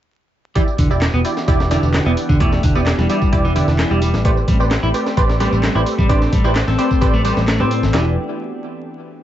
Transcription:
0.55 E3 B3 D4 E4 F#4 G4 D5, kick, closed hi-hat, tambourine
0.68 tambourine
0.78 E1 D3, kick, closed hi-hat, open hi-hat, tambourine
0.90 E4 G4 D5, tambourine
1.02 snare, clap, closed hi-hat, tambourine
1.14 E1 B3, tambourine
1.24 E4 G4 D5, closed hi-hat, open hi-hat, tambourine
1.37 snare, tambourine
1.48 E1 E4 G4 D5, kick, closed hi-hat, tambourine
1.60 snare, tambourine
1.71 D3 E4 G4 D5, snare, closed hi-hat, open hi-hat, tambourine
1.83 E1, tambourine
1.94 snare, clap, closed hi-hat, tambourine
2.06 E1 B3 E4 G4 D5, tambourine
2.17 closed hi-hat, open hi-hat, tambourine
2.29 E1 D3, kick, tambourine
2.40 A3 E4 G4 D5, kick, closed hi-hat, tambourine
2.52 snare, tambourine
2.63 E1 D3, kick, closed hi-hat, open hi-hat, tambourine
2.75 B3 E4 G4 D5, tambourine
2.86 snare, clap, closed hi-hat, tambourine
2.98 E1 G3, snare, tambourine
3.09 G3 E4 G4 D5, closed hi-hat, open hi-hat, tambourine
3.22 kick, tambourine
3.32 E1 E4 G4 D5, kick, closed hi-hat, tambourine
3.45 E3, tambourine
3.55 D3 E4 G4 D5, closed hi-hat, open hi-hat, tambourine
3.67 E1, snare, tambourine
3.79 E3, snare, clap, closed hi-hat, tambourine
3.91 E1 G3 E4 G4 D5, tambourine
4.02 G3, closed hi-hat, open hi-hat, tambourine
4.14 A1, snare, tambourine
4.25 A3 C4 G4 B4 C5 D5, kick, closed hi-hat, tambourine
4.37 tambourine
4.48 A1 G3, kick, closed hi-hat, open hi-hat, tambourine
4.60 G4 B4 C5 D5, tambourine
4.71 snare, clap, closed hi-hat, tambourine
4.83 A1 E4, tambourine
4.94 G4 B4 C5 D5, closed hi-hat, open hi-hat, tambourine
5.06 snare, tambourine
5.17 A1 G4 B4 C5 D5, kick, closed hi-hat, tambourine
5.29 snare, tambourine
5.40 G3 G4 B4 C5 D5, snare, closed hi-hat, open hi-hat, tambourine
5.52 A1, tambourine
5.63 snare, clap, closed hi-hat, tambourine
5.75 A1 E4 G4 B4 C5 D5, tambourine
5.86 closed hi-hat, open hi-hat, tambourine
5.98 A1 G3, kick, tambourine
6.09 D4 G4 A4 B4 C5 D5, kick, closed hi-hat, tambourine
6.22 snare, tambourine
6.33 A1 G3, kick, closed hi-hat, open hi-hat, tambourine
6.44 E4 G4 B4 C5 D5, tambourine
6.56 snare, clap, closed hi-hat, tambourine
6.68 A1 C4, snare, tambourine
6.78 C4 G4 B4 C5 D5, closed hi-hat, open hi-hat, tambourine
6.91 kick, tambourine
7.01 A1 G4 B4 C5 D5, kick, closed hi-hat, tambourine
7.14 A3, tambourine
7.24 G3 G4 B4 C5 D5, closed hi-hat, open hi-hat, tambourine
7.37 A1, snare, tambourine
7.48 A3, snare, clap, closed hi-hat, tambourine
7.60 A2 C4 G4 B4 C5 D5, tambourine
7.71 C4, closed hi-hat, open hi-hat, tambourine
7.83 A1, snare, tambourine
7.94 E1 E3 B3 D4 E4 F#4 G4 D5, snare, clap

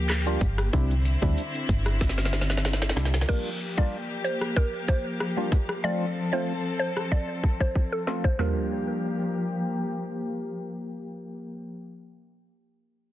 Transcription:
Already playing: D2 F3 A#3 G4
0.10 cross-stick, clap, shaker
0.26 G3 A#3 D4 F4, shaker
0.41 G1, kick, closed hi-hat, shaker
0.58 cross-stick, shaker
0.73 C2 D3 G3 C4 D4 E4, kick, shaker
0.90 shaker
1.05 closed hi-hat, shaker
1.22 D2 G3 C4 D4 E4, kick, shaker
1.37 shaker
1.54 shaker
1.69 G1, kick, closed hi-hat, shaker
1.86 cross-stick, shaker
2.01 kick, snare, shaker
2.09 snare
2.18 snare, shaker
2.25 snare
2.33 snare, closed hi-hat, shaker
2.41 snare
2.50 snare, shaker
2.57 snare
2.65 snare, shaker
2.73 snare
2.82 snare, shaker
2.89 snare
2.96 C2 G3 C4 D4 E4, snare, closed hi-hat, shaker
3.05 snare
3.14 snare, shaker
3.21 snare
3.28 F3 G3 A#3 D4 F4 G4 A#4, kick, crash
3.61 closed hi-hat
3.77 G3 A#3 D4 F4 D5, kick
4.24 C5, closed hi-hat
4.41 cross-stick
4.56 A#4, kick
4.88 C5, kick, closed hi-hat
5.20 cross-stick
5.37 G3 A#3 D4 F4
5.52 kick, closed hi-hat
5.69 cross-stick
5.84 F3 A3 C4 F4 A4 D5
6.33 F3 A3 C4 F4 C5
6.79 C5
6.97 cross-stick
7.12 D5, kick
7.44 kick
7.60 C5, kick
7.75 kick
7.92 A4
8.07 F3 A3 C4 F4, snare
8.24 C5, kick
8.39 F3 G3 A#3 D4 F4 G4 A#4, snare, floor tom, open hi-hat

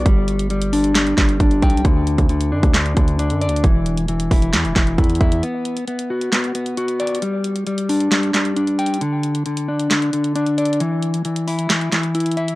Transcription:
0.06 G1 G3, kick, closed hi-hat
0.28 closed hi-hat
0.39 closed hi-hat
0.50 G3, closed hi-hat
0.62 closed hi-hat
0.73 D4, open hi-hat
0.84 closed hi-hat
0.95 G3, snare, clap, closed hi-hat
1.07 closed hi-hat
1.18 G1 G3, kick, snare, clap, closed hi-hat
1.29 closed hi-hat
1.40 G1 D4, kick, closed hi-hat
1.51 closed hi-hat
1.62 B1 G5, kick, closed hi-hat
1.70 closed hi-hat
1.77 closed hi-hat
1.85 D2 D3, kick, closed hi-hat
2.07 closed hi-hat
2.18 D2, kick, closed hi-hat
2.29 D3, closed hi-hat
2.41 closed hi-hat
2.52 F#2 D4
2.63 D2, kick, closed hi-hat
2.74 D3, snare, clap, closed hi-hat
2.86 closed hi-hat
2.97 D2 D3, kick, closed hi-hat
3.08 closed hi-hat
3.19 D4, closed hi-hat
3.30 F#2, closed hi-hat
3.41 D5, closed hi-hat
3.47 D2, closed hi-hat
3.56 closed hi-hat
3.64 E1 E3, kick, closed hi-hat
3.86 closed hi-hat
3.97 closed hi-hat
4.08 E3, closed hi-hat
4.20 closed hi-hat
4.31 E1 E4, kick, open hi-hat
4.42 closed hi-hat
4.53 E2 E3, snare, clap, closed hi-hat
4.65 E1, closed hi-hat
4.76 E1 E3, kick, snare, clap, closed hi-hat
4.87 closed hi-hat
4.98 E2 E4, kick, closed hi-hat
5.04 closed hi-hat
5.10 closed hi-hat
5.15 closed hi-hat
5.21 E2 E5, kick, closed hi-hat
5.32 closed hi-hat
5.43 B3, closed hi-hat
5.65 closed hi-hat
5.77 closed hi-hat
5.88 B3, closed hi-hat
5.99 closed hi-hat
6.10 F#4
6.21 closed hi-hat
6.32 B3, snare, clap, closed hi-hat
6.44 closed hi-hat
6.55 B3, closed hi-hat
6.66 closed hi-hat
6.77 F#4, closed hi-hat
6.88 closed hi-hat
7.00 D5, closed hi-hat
7.07 closed hi-hat
7.15 closed hi-hat
7.22 G3, closed hi-hat
7.44 closed hi-hat
7.56 closed hi-hat
7.67 G3, closed hi-hat
7.78 closed hi-hat
7.89 D4, open hi-hat
8.00 closed hi-hat
8.12 G3, snare, clap, closed hi-hat
8.23 closed hi-hat
8.34 G3, snare, clap, closed hi-hat
8.45 closed hi-hat
8.56 D4, closed hi-hat
8.67 closed hi-hat
8.79 G5, closed hi-hat
8.86 closed hi-hat
8.94 closed hi-hat
9.01 D3, closed hi-hat
9.23 closed hi-hat
9.35 closed hi-hat
9.46 D3, closed hi-hat
9.57 closed hi-hat
9.68 D4
9.79 closed hi-hat
9.91 D3, snare, clap, closed hi-hat
10.02 closed hi-hat
10.13 D3, closed hi-hat
10.24 closed hi-hat
10.36 D4, closed hi-hat
10.46 closed hi-hat
10.58 D5, closed hi-hat
10.65 closed hi-hat
10.73 closed hi-hat
10.80 E3, closed hi-hat
11.02 closed hi-hat
11.14 closed hi-hat
11.25 E3, closed hi-hat
11.36 closed hi-hat
11.48 E4, open hi-hat
11.59 closed hi-hat
11.70 E3, snare, clap, closed hi-hat
11.81 closed hi-hat
11.92 E3, snare, clap, closed hi-hat
12.03 closed hi-hat
12.15 E4, closed hi-hat
12.20 closed hi-hat
12.26 closed hi-hat
12.31 closed hi-hat
12.37 E5, closed hi-hat
12.48 closed hi-hat

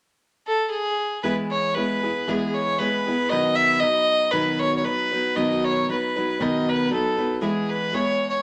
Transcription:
0.47 A4
0.71 G#4
1.23 E3 G#3 B3 E4 G#4 B4
1.51 C#5
1.75 G#3 B3 E4 G#4 B4
2.03 B3 E4 G#4
2.27 E3 G#3 B3 E4 G#4
2.54 C#5
2.79 G#3 B3 E4 G#4 B4
3.07 B3 E4 G#4
3.30 B2 D#3 F#3 B3 D#4 B4 D#5
3.56 E5
3.80 F#3 B3 D#4 B4 D#5
4.31 B2 D#3 F#3 B3 D#4 B4
4.59 C#5
4.77 C#5
4.83 F#3 B3 D#4 B4
5.11 F#3 B3 D#4 B4
5.36 B2 D#3 F#3 B3 D#4 B4 D#5
5.65 C#5
5.88 F#3 B3 D#4 B4
6.16 F#3 B3 D#4 B4
6.40 B2 D#3 F#3 B3 D#4 B4 D#5
6.70 B4
6.91 F#3 B3 D#4 A4 B4
7.17 F#3 B3 D#4 B4
7.41 E3 G#3 B3 E4 G#4
7.70 B4
7.92 G#3 B3 E4 G#4 C#5
8.29 C#5

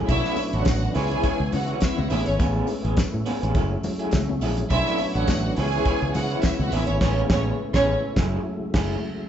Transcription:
Already playing: F#3 A3 C#4
0.08 B1 B3 D4 E4 A4 C#5 E5, kick, closed hi-hat, tambourine, muted conga
0.25 snare
0.36 muted clean electric guitar stroke, open hi-hat, tambourine, muted conga
0.52 A1 D4 F#4 A4 C#5 F#5, closed hi-hat
0.65 A1, muted clean electric guitar stroke, kick, snare, closed hi-hat, tambourine, high conga
0.82 muted clean electric guitar stroke
0.94 C#2 E3 G#3 E4 G#4 B4 C#5 G#5, open hi-hat, tambourine, muted conga
1.11 E4 B4 C#5, closed hi-hat
1.23 E4 B4 C#5, kick, closed hi-hat, tambourine
1.39 C#2, muted clean electric guitar stroke
1.52 C#3 F#4 F#5, muted clean electric guitar stroke, open hi-hat, tambourine, low conga
1.67 E4 B4 C#5, closed hi-hat
1.80 E4 E5, kick, snare, closed hi-hat, tambourine, high conga
1.97 C#2 F#4 F#5, muted clean electric guitar stroke, high conga
2.10 A1 G#3 A3 B3 C#4 E4 G#4 E5, open hi-hat, tambourine
2.26 G#1 C#4 C#5, muted clean electric guitar stroke, closed hi-hat
2.39 A1 B3 C#4 G#4, kick, closed hi-hat, tambourine, muted conga
2.67 muted clean electric guitar stroke, open hi-hat, tambourine, muted conga
2.83 A1 B3 C#4 G#4, closed hi-hat
2.97 muted clean electric guitar stroke, kick, snare, closed hi-hat, tambourine, high conga
3.13 A2, muted clean electric guitar stroke
3.26 B3 C#4 G#4, open hi-hat, muted conga
3.42 A1 B3 C#4 G#4, closed hi-hat
3.54 F#1 F#3 A3 E4 G#4, kick, closed hi-hat, tambourine
3.71 muted clean electric guitar stroke
3.83 muted clean electric guitar stroke, open hi-hat, tambourine, low conga
3.99 A3 E4 G#4, closed hi-hat
4.11 C#2, kick, snare, closed hi-hat, tambourine, high conga
4.29 muted clean electric guitar stroke, high conga
4.41 A#1 A3 E4 G#4, open hi-hat, tambourine
4.57 muted clean electric guitar stroke, closed hi-hat
4.70 B1 B3 C#4 D4 E4 G#4 C5 E5, kick, closed hi-hat, tambourine, muted conga
4.82 D4 A4 C#5
4.86 snare
4.97 muted clean electric guitar stroke, open hi-hat, tambourine, muted conga
5.14 A1 D4 F#4 A4 C#5 F#5, closed hi-hat
5.27 A1, muted clean electric guitar stroke, kick, snare, closed hi-hat, tambourine, high conga
5.45 muted clean electric guitar stroke
5.57 C#2 E3 G#3 E4 G#4 B4 C#5 G#5, open hi-hat, muted conga
5.73 E4 B4 C#5, closed hi-hat
5.85 E4 B4 C#5, kick, closed hi-hat, tambourine
6.02 C#2, muted clean electric guitar stroke
6.14 C#3 F#4 F#5, muted clean electric guitar stroke, open hi-hat, tambourine, low conga
6.30 E4 B4 C#5, closed hi-hat
6.42 E4 E5, kick, snare, closed hi-hat, tambourine, high conga
6.58 C#2 F#4 F#5, muted clean electric guitar stroke, high conga
6.71 A1 C#3 A3 B3 C#4 E4 G#4 E5, open hi-hat, tambourine
6.86 G#1 C#4 C#5, muted clean electric guitar stroke, closed hi-hat
7.00 A1 B3 C#4 G#4 C#5, kick, snare, crash
7.29 A1 B3 C#4 G#4 C#5, kick, snare
7.74 A1 B3 C#4 G#4 C#5, kick, snare
8.16 F#1 F#3 A3 E4 G#4, kick, snare
8.74 F#1 A3 E4 G#4, kick, snare, crash

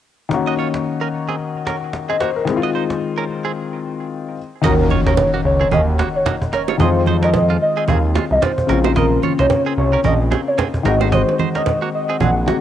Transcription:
0.29 D#3 A#3 C#4, cajon slap
0.34 F#4
0.47 F#4 D#5, cajon slap
0.58 F4 C#5, cajon slap
0.74 cajon slap
0.85 cajon slap
1.01 C#4 A#4, cajon slap
1.13 cajon slap
1.28 C4 G#4, cajon slap
1.39 cajon slap
1.55 cajon slap
1.67 C#4 A#4, cajon slap
1.82 cajon slap
1.93 cajon slap
2.09 C4 G#4 D#5, cajon slap
2.20 A#3 F#4 C5, cajon slap
2.36 A#4, cajon slap
2.45 D#3 G#3 C4, cajon slap
2.50 E4
2.56 F4
2.63 F#4 D#5, cajon slap
2.74 D#4 C5, cajon slap
2.90 cajon slap
3.01 cajon slap
3.17 C#4 A#4, cajon slap
3.29 cajon slap
3.44 C4 G#4, cajon slap
4.61 D#2 D#3 A#3 C#4 F#4 A#4 D#5, cajon bass, cajon slap, impact, low conga
4.66 F#4
4.90 F4 C#5, low conga
5.06 D#2 C#4 A#4 C#5, cajon slap
5.17 cajon bass, high bongo
5.34 A#3 F#4
5.45 C#2 C#5
5.61 C4 G#4
5.71 D#2 C#4 G#4 D#5, cajon bass, low conga
5.99 A#3 F#4, cajon slap, low bongo
6.16 C#5
6.26 A#3 F#4, cajon bass, cajon slap, high bongo
6.42 cajon bass
6.53 C#4 A#4 C#5, cajon slap
6.68 F4 C#5, high bongo, low bongo
6.78 F2 D#3 G#3 C4 G#4 C5 D#5, cajon bass, cajon slap, low conga
6.82 F4
7.06 D#4 C5, low conga
7.23 C#4 A#4 D#5, cajon slap
7.34 cajon bass, high bongo
7.50 G#3 F4
7.62 D#5
7.77 C4 G#4
7.88 D#2 C4 G#4 F5, cajon bass, low conga
8.15 G#3 F4, cajon slap, low bongo
8.31 C2 D#5
8.42 G#3 F4 C5, cajon bass, cajon slap, high bongo
8.58 cajon bass
8.67 A#1 C#3 A#3 C4 C#4 A#4, cajon slap
8.72 F4
8.84 D#4 C5, high bongo, low bongo
8.96 A#4 D#5, cajon bass, cajon slap, low conga
9.23 F4 C#5, low conga
9.39 C2 D#4 C5 C#5, cajon slap
9.50 cajon bass, high bongo
9.66 C4 G#4
9.77 C2 C#5
9.93 C#4 A#4
10.04 A#1 C#4 A#4 D#5, cajon bass, low conga
10.31 C4 G#4, cajon slap, low bongo
10.48 C#5
10.58 C4 G#4, cajon bass, cajon slap, high bongo
10.74 cajon bass
10.83 G#1 D#3 G#3 C4 D#4 A#4 D#5, cajon slap
10.88 F#4
11.01 D#4 C5, high bongo, low bongo
11.12 F#4 C5 D#5, cajon bass, cajon slap, low conga
11.29 high bongo
11.39 D#4 C5, low conga
11.55 C#4 A#4 D#5, cajon slap
11.66 cajon bass, high bongo
11.82 A#3 F#4
11.94 D#5
12.09 C4 G#4
12.20 A#1 C4 G#4 F#5, cajon bass, low conga
12.46 D#3 G#3 A#3 C4 F#4, cajon slap, low bongo

